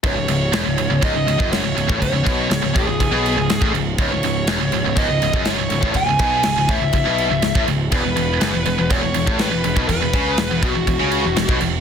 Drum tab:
CC |x-x-x-x-x-x-x-x-|x-x-x-x-x-x-x-x-|x-x-x-x-x-x-x-x-|x-x-x-x-x-x-x-x-|
SD |----o-------o---|----o-------o---|----o-------o---|----o-------o---|
BD |o-------o--o---o|o-o---o-o----o--|o-------o--o---o|o-o---o-o----o--|

CC |x-x-x-x-x-x-x-x-|x-x-x-x-x-x-x-x-|
SD |----o-------o---|----o-------o---|
BD |o-------o--o---o|o-o---o-o----o--|